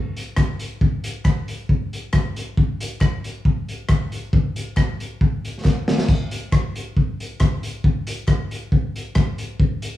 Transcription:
0.17 closed hi-hat
0.36 kick, cross-stick, clap
0.59 closed hi-hat
0.81 kick
1.04 closed hi-hat
1.25 kick, cross-stick, clap
1.48 closed hi-hat
1.69 kick
1.93 closed hi-hat
2.13 kick, cross-stick, clap
2.36 closed hi-hat
2.57 kick
2.80 closed hi-hat
3.01 kick, cross-stick, clap
3.24 closed hi-hat
3.45 kick
3.69 closed hi-hat
3.89 kick, cross-stick, clap
4.12 closed hi-hat
4.33 kick
4.56 closed hi-hat
4.77 kick, cross-stick, clap
5.00 closed hi-hat
5.21 kick
5.45 closed hi-hat
5.65 kick, snare, clap
5.88 snare
5.98 snare
6.08 kick, splash
6.31 closed hi-hat
6.52 kick, cross-stick, clap
6.76 closed hi-hat
6.97 kick
7.20 closed hi-hat
7.40 kick, cross-stick, clap
7.63 closed hi-hat
7.84 kick
8.07 closed hi-hat
8.28 kick, cross-stick, clap
8.51 closed hi-hat
8.72 kick
8.96 closed hi-hat
9.15 kick, cross-stick, clap
9.38 closed hi-hat
9.60 kick
9.82 closed hi-hat

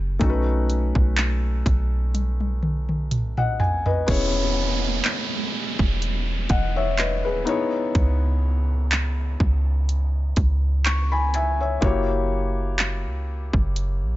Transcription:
Already playing: F#1 G3 C#4 E4 F#4 A#4
0.19 B1 A3 C#4 D#4 F#4 A4, kick, closed hi-hat
0.29 B4
0.70 closed hi-hat
0.95 B1, kick
1.17 clap, closed hi-hat
1.66 B1, kick, closed hi-hat
2.14 closed hi-hat, high tom
2.40 high tom
2.63 mid tom
2.89 mid tom
3.11 closed hi-hat, mid tom
3.37 D#5 F#5, mid tom
3.60 G#5, floor tom
3.86 B4 D#5, floor tom
4.06 E1 B3 C#4 E4 G#4 C#5, kick, closed hi-hat, crash, downlifter
5.04 clap, closed hi-hat
5.79 E1, kick
6.02 closed hi-hat
6.49 E1 D#5 F#5, kick, closed hi-hat
6.76 C#5 E5
6.98 B4, clap, closed hi-hat
7.24 D#1 G#4 B4
7.45 B3 D#4 E4 G#4 C#5, closed hi-hat
7.95 C#2, kick, closed hi-hat
8.91 clap, closed hi-hat
9.40 C#2, kick
9.89 closed hi-hat
10.36 C#2, kick, closed hi-hat
10.85 C#6, clap, closed hi-hat
11.12 G#5 B5
11.34 E5 G#5, closed hi-hat
11.60 C#5 E5
11.81 F#1 A#3 E4 F#4 G4 C#5, kick, closed hi-hat
12.79 clap, closed hi-hat
13.05 C#2
13.53 F#1, kick
13.76 closed hi-hat
14.02 A#1

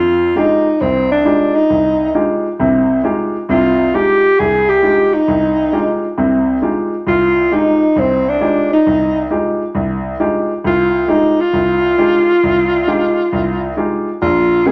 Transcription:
Already playing: F2 F4
0.35 G#3 D#4 F4 G4
0.81 C2 C4
1.12 D4
1.25 G#3 D#4 F4 G4
1.56 D#4
1.70 C2
2.14 G#3 D#4 F4 G4
2.59 C2 C3
3.04 G#3 D#4 F4 G4
3.49 C2 C3 F4
3.94 G#3 D#4 F4 G4
4.39 C2 G#4
4.69 G4
4.83 G#3 D#4 F4 G4
5.14 D#4
5.28 C2
5.73 G#3 D#4 F4 G4
6.18 C2 C3
6.62 G#3 D#4 F4 G4
7.07 C2 F4
7.51 G#3 D#4 F4 G4
7.96 C2 C4
8.29 D4
8.41 G#3 D#4 F4 G4
8.73 D#4
8.87 C2
9.30 G#3 D#4 F4 G4
9.75 C2
10.20 G#3 D#4 F4 G4
10.64 C2 F4
11.08 G#3 D#4 F4 G4
11.40 F4
11.53 C2
11.98 G#3 D#4 F4 G4
12.43 C2
12.87 G#3 D#4 F4 G4
13.32 C2
13.77 G#3 D#4 F4 G4
14.22 A#1 F4
14.66 G#3 A#3 C4 C#4 G#4

